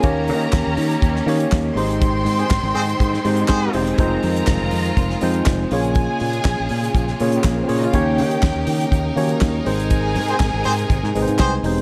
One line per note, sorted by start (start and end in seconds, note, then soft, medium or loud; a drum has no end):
0.00 0.31 D#2 loud
0.00 1.73 A#3 medium
0.00 0.83 A#3 medium
0.00 0.83 C#4 medium
0.00 0.83 D#4 medium
0.00 1.48 A#4 medium
0.00 1.48 A#5 loud
0.00 kick loud
0.00 closed hi-hat medium
0.04 5.67 D#3 medium
0.04 1.75 C#4 medium
0.04 1.75 G4 medium
0.04 0.84 G4 medium
0.04 0.84 C#5 loud
0.28 0.46 D#3 loud
0.28 open hi-hat medium
0.41 closed hi-hat soft
0.52 0.62 D#2 loud
0.52 kick loud
0.52 snare loud
0.52 clap medium
0.52 closed hi-hat medium
0.67 0.75 D#2 medium
0.77 0.95 D#3 loud
0.77 open hi-hat medium
0.91 closed hi-hat soft
1.02 1.20 D#2 loud
1.02 kick loud
1.02 closed hi-hat medium
1.16 snare soft
1.26 1.44 D#3 loud
1.26 1.67 A#3 loud
1.26 1.67 C#4 medium
1.26 1.68 D#4 medium
1.26 1.68 G4 medium
1.26 1.68 C#5 loud
1.26 open hi-hat medium
1.40 closed hi-hat medium
1.52 1.70 D#2 loud
1.52 kick loud
1.52 snare loud
1.52 clap loud
1.52 closed hi-hat medium
1.75 2.27 G#1 loud
1.75 2.56 G#3 loud
1.75 7.90 G#3 medium
1.75 2.56 C4 medium
1.75 5.67 C4 medium
1.75 2.56 D#4 medium
1.75 2.56 G4 medium
1.75 3.57 C5 loud
1.75 2.56 C5 medium
1.75 3.97 G5 medium
1.75 3.57 C6 loud
1.75 open hi-hat medium
1.91 closed hi-hat medium
2.01 kick loud
2.01 closed hi-hat medium
2.25 2.43 G#2 medium
2.25 open hi-hat medium
2.39 2.47 C4 medium
2.39 2.46 G#4 medium
2.39 2.47 C5 medium
2.39 closed hi-hat soft
2.50 2.60 G#1 loud
2.50 kick loud
2.50 snare loud
2.50 clap loud
2.50 closed hi-hat medium
2.63 2.72 G#1 medium
2.75 2.93 G#2 loud
2.75 2.84 C4 loud
2.75 2.84 G#4 loud
2.75 2.84 C5 loud
2.75 open hi-hat medium
2.89 closed hi-hat medium
3.00 3.17 G#2 loud
3.00 kick loud
3.00 closed hi-hat medium
3.14 snare soft
3.25 3.42 G#2 medium
3.25 3.65 G#3 medium
3.25 3.65 C4 medium
3.25 3.65 D#4 medium
3.25 3.65 G4 medium
3.25 3.66 C5 loud
3.25 open hi-hat medium
3.36 closed hi-hat soft
3.48 3.67 G#2 loud
3.48 3.81 C4 loud
3.48 3.81 G#4 loud
3.48 3.81 C5 loud
3.48 kick loud
3.48 snare loud
3.48 clap loud
3.48 closed hi-hat medium
3.66 3.74 D#4 medium
3.66 3.75 D#5 medium
3.73 3.92 E1 medium
3.73 3.94 G#3 medium
3.73 3.94 C4 medium
3.73 3.94 D#4 medium
3.73 3.83 F4 medium
3.73 3.94 G4 medium
3.73 3.94 C5 medium
3.73 3.83 F5 medium
3.73 open hi-hat medium
3.81 3.90 G4 medium
3.81 3.90 G5 medium
3.87 3.99 G#4 medium
3.87 closed hi-hat soft
3.91 3.99 G#5 loud
3.98 4.16 F1 loud
3.98 4.78 G#3 medium
3.98 4.78 C4 medium
3.98 4.78 D#4 medium
3.98 5.69 F4 loud
3.98 4.78 F4 medium
3.98 5.44 A#4 medium
3.98 4.79 C5 medium
3.98 5.44 A#5 loud
3.98 kick loud
3.98 closed hi-hat medium
4.23 4.41 F2 loud
4.23 open hi-hat medium
4.36 closed hi-hat medium
4.46 4.57 F1 medium
4.46 kick loud
4.46 snare loud
4.46 clap medium
4.46 closed hi-hat medium
4.61 4.69 F1 medium
4.71 4.90 F2 medium
4.71 open hi-hat medium
4.86 closed hi-hat soft
4.97 5.14 F1 medium
4.97 kick loud
4.97 closed hi-hat medium
5.10 snare soft
5.21 5.40 F2 loud
5.21 5.62 G#3 medium
5.21 5.62 C4 medium
5.21 5.63 D#4 medium
5.21 5.62 F4 medium
5.21 5.63 C5 loud
5.21 open hi-hat medium
5.34 closed hi-hat medium
5.46 5.64 F1 loud
5.46 kick loud
5.46 snare loud
5.46 clap loud
5.46 closed hi-hat medium
5.71 6.06 A#1 loud
5.71 9.63 C#3 medium
5.71 6.51 A#3 loud
5.71 9.63 A#3 medium
5.71 6.51 C#4 medium
5.71 7.91 F4 medium
5.71 6.51 F4 medium
5.71 7.28 G#4 loud
5.71 6.51 G#4 medium
5.71 6.52 C#5 loud
5.71 7.28 G#5 loud
5.71 open hi-hat medium
5.84 closed hi-hat soft
5.95 kick loud
5.95 closed hi-hat medium
6.20 6.38 A#2 loud
6.20 open hi-hat medium
6.33 closed hi-hat medium
6.44 6.55 A#1 loud
6.44 kick loud
6.44 snare loud
6.44 clap loud
6.44 closed hi-hat medium
6.60 6.68 A#1 medium
6.69 6.88 A#2 loud
6.69 open hi-hat medium
6.84 closed hi-hat medium
6.94 7.12 A#1 loud
6.94 kick loud
6.94 closed hi-hat medium
7.08 snare soft
7.20 7.38 A#2 medium
7.20 7.60 A#3 loud
7.20 7.60 C#4 medium
7.20 7.60 F4 medium
7.20 7.61 G#4 medium
7.20 7.61 C#5 loud
7.20 open hi-hat medium
7.32 closed hi-hat medium
7.36 7.44 G3 medium
7.36 7.44 G4 medium
7.44 7.62 A#1 loud
7.44 7.53 G#3 medium
7.44 7.53 G#4 medium
7.44 kick loud
7.44 snare loud
7.44 clap loud
7.44 closed hi-hat medium
7.52 7.60 A#3 medium
7.52 7.61 A#4 medium
7.61 7.69 C4 medium
7.61 7.69 C5 medium
7.68 7.86 A#2 medium
7.68 7.88 A#3 medium
7.68 7.88 C#4 medium
7.68 7.77 C#4 medium
7.68 7.89 F4 medium
7.68 7.89 G#4 medium
7.68 7.77 C#5 medium
7.68 7.89 C#5 loud
7.68 open hi-hat medium
7.78 7.85 D#4 loud
7.78 7.86 D#5 loud
7.83 7.93 F4 medium
7.83 7.93 F5 loud
7.83 closed hi-hat soft
7.93 8.20 D#2 loud
7.93 8.73 A#3 medium
7.93 8.73 C#4 medium
7.93 11.82 D#4 medium
7.93 8.73 D#4 medium
7.93 9.39 G4 loud
7.93 8.73 G4 medium
7.93 11.82 A#4 loud
7.93 8.74 C#5 loud
7.93 9.39 G5 loud
7.93 kick loud
7.93 closed hi-hat medium
8.18 8.36 D#3 loud
8.18 open hi-hat medium
8.31 closed hi-hat medium
8.42 8.52 D#2 medium
8.42 kick loud
8.42 snare loud
8.42 clap medium
8.42 closed hi-hat medium
8.56 8.64 D#2 medium
8.67 8.85 D#3 loud
8.67 open hi-hat medium
8.81 closed hi-hat soft
8.92 9.09 D#2 loud
8.92 kick loud
8.92 closed hi-hat medium
9.16 9.34 D#3 medium
9.16 9.57 A#3 medium
9.16 9.57 C#4 medium
9.16 9.57 D#4 medium
9.16 9.24 F#4 medium
9.16 9.57 C#5 loud
9.16 open hi-hat medium
9.23 9.60 G4 medium
9.29 closed hi-hat medium
9.41 9.59 D#2 loud
9.41 kick loud
9.41 snare loud
9.41 clap medium
9.41 closed hi-hat medium
9.65 10.17 G#1 loud
9.65 11.82 C3 medium
9.65 10.45 G#3 medium
9.65 11.82 G#3 medium
9.65 10.45 C4 medium
9.65 10.45 D#4 medium
9.65 11.60 G#4 loud
9.65 10.45 G#4 medium
9.65 10.46 C5 loud
9.65 11.59 G#5 loud
9.65 open hi-hat medium
9.80 closed hi-hat medium
9.90 kick loud
9.90 closed hi-hat medium
10.15 10.33 G#2 loud
10.15 open hi-hat medium
10.28 10.37 C4 medium
10.28 10.36 G#4 medium
10.28 10.37 C5 medium
10.28 closed hi-hat soft
10.39 10.50 G#1 loud
10.39 kick loud
10.39 snare loud
10.39 clap loud
10.39 closed hi-hat medium
10.54 10.62 G#1 loud
10.64 10.83 G#2 medium
10.64 10.73 C4 medium
10.64 10.74 G#4 loud
10.64 10.73 C5 loud
10.64 open hi-hat medium
10.79 closed hi-hat medium
10.90 10.99 G#1 loud
10.90 kick loud
10.90 closed hi-hat medium
11.03 11.11 G#2 loud
11.03 snare soft
11.15 11.24 G#1 medium
11.15 11.55 G#3 medium
11.15 11.55 C4 medium
11.15 11.55 D#4 medium
11.15 11.55 G#4 medium
11.15 11.22 B4 medium
11.15 open hi-hat medium
11.22 11.59 C5 medium
11.27 11.36 G#2 loud
11.27 closed hi-hat medium
11.39 11.57 C2 medium
11.39 11.55 C4 medium
11.39 11.55 G#4 loud
11.39 11.55 C5 loud
11.39 kick loud
11.39 snare loud
11.39 clap loud
11.39 closed hi-hat medium
11.63 11.81 E1 medium
11.63 11.82 G#3 medium
11.63 11.82 C4 medium
11.63 11.82 D#4 medium
11.63 11.82 G4 medium
11.63 11.82 C5 medium
11.63 open hi-hat medium
11.78 closed hi-hat soft